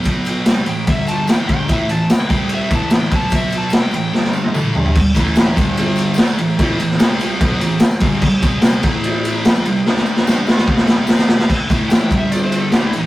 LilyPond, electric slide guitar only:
\new Staff \with { instrumentName = "Electric slide guitar" } { \time 4/4 \key a \minor \tempo 4 = 147 r4. g''8 e''8 a''8 g''8 g''8 | e''8 a''8 g''8 g''8 e''8 a''8 g''8 a''8 | e''8 a''8 g''8 g''4 r4. | r1 |
r1 | r1 | r1 | r4 \tuplet 3/2 { g''4 e''8 d''8 c''8 a'8 g'8 e'8 dis'8 } | }